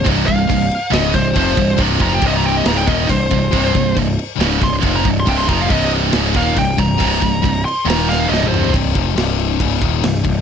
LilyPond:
<<
  \new Staff \with { instrumentName = "Lead electric guitar" } { \time 4/4 \key c \minor \tempo 4 = 138 r8 f''4. ees''8 c''8 c''4 | r8 bes''16 g''16 ees''16 bes''16 g''16 ees''16 bes''16 g''16 ees''8 c''4~ | c''4 r4. c'''16 r8 bes''16 r16 c'''16 | g''16 c'''16 bes''16 f''16 ees''8 r4 f''8 g''8 bes''8~ |
bes''4. c'''8 bes''8 f''8 ees''8 c''8 | r1 | }
  \new Staff \with { instrumentName = "Distorted electric guitar" } { \clef bass \time 4/4 \key c \minor <c, g, c>8 <c, g,>8 <c, g,>8 r8 <des, aes, des>8 <c, g,>8 <f, c f>8 <c, g,>8 | <c, g, c>8 <f, c f>8 <c, g, c>4 <des, aes, des>8 <ees, bes, ees>8 <c, g,>8 <c, g,>8 | <c, g, c>8 <c, g,>8 <c, g,>8 r8 <des, aes, des>8 <c, g,>8 <f, c f>8 <c, g,>8 | <c, g, c>8 <f, c f>8 <c, g, c>4 <des, aes, des>8 <ees, bes, ees>8 <c, g,>8 <c, g,>8 |
<c, g, c>8 <c, g,>8 <c, g,>8 r8 <ees, bes, ees>4 <c, g, c>4 | <c, g, c>8 <f, c f>8 <c, g, c>4 <des, aes, des>8 <ees, bes, ees>8 <c, g,>8 <c, g,>8 | }
  \new Staff \with { instrumentName = "Distorted electric guitar" } { \clef bass \time 4/4 \key c \minor <c, g, c>8 <c, g,>8 <c, g,>8 r8 <des, aes, des>8 <c, g,>8 <f, c f>8 <c, g,>8 | <c, g, c>8 <f, c f>8 <c, g, c>4 <des, aes, des>8 <ees, bes, ees>8 <c, g,>8 <c, g,>8 | <c, g, c>8 <c, g,>8 <c, g,>8 r8 <des, aes, des>8 <c, g,>8 <f, c f>8 <c, g,>8 | <c, g, c>8 <f, c f>8 <c, g, c>4 <des, aes, des>8 <ees, bes, ees>8 <c, g,>8 <c, g,>8 |
<c, g, c>8 <c, g,>8 <c, g,>8 r8 <ees, bes, ees>4 <c, g, c>4 | r1 | }
  \new Staff \with { instrumentName = "Picked electric bass" } { \clef bass \time 4/4 \key c \minor c,,8 c,,8 c,,8 r8 des,,8 c,,8 f,,8 c,,8 | c,,8 f,,8 c,,4 des,,8 ees,,8 c,,8 c,,8 | c,,8 c,,8 c,,8 r8 des,,8 c,,8 f,,8 c,,8 | c,,8 f,,8 c,,4 des,,8 ees,,8 c,,8 c,,8 |
c,,8 c,,8 c,,8 r8 ees,,4 c,,4 | c,,8 f,,8 c,,4 des,,8 ees,,8 c,,8 c,,8 | }
  \new DrumStaff \with { instrumentName = "Drums" } \drummode { \time 4/4 <cymc bd>8 <cymc bd>8 <cymc bd>8 cymc8 <cymc sn>8 <cymc bd sn>8 <cymc bd>8 <cymc bd>8 | <cymc bd>8 <cymc bd>8 <cymc bd>8 cymc8 <cymc sn>8 <cymc bd>8 <cymc bd sn>8 <cymc bd>8 | <cymc bd>8 <cymc bd>8 <cymc bd>8 cymc8 <cymc sn>8 <cymc bd sn>8 <cymc bd>8 <cymc bd>8 | <cymc bd>8 <cymc bd>8 <cymc bd>8 cymc8 <cymc sn>8 <cymc bd>8 <cymc bd sn>8 <cymc bd>8 |
<cymc bd>8 <cymc bd>8 <cymc bd>8 cymc8 <cymc sn>8 <cymc sn>8 sn16 tommh16 toml16 tomfh16 | <cymc bd>8 <cymc bd>8 <cymc sn>8 cymc8 <cymc bd>8 <cymc bd>8 <cymc sn>16 sn16 <cymc bd>8 | }
>>